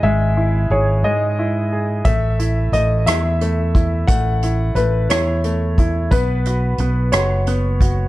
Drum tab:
HH |------|xxxxxx|xxxxxx|xxxxxx|
SD |------|---r--|---r--|---r--|
BD |------|o----o|o----o|o----o|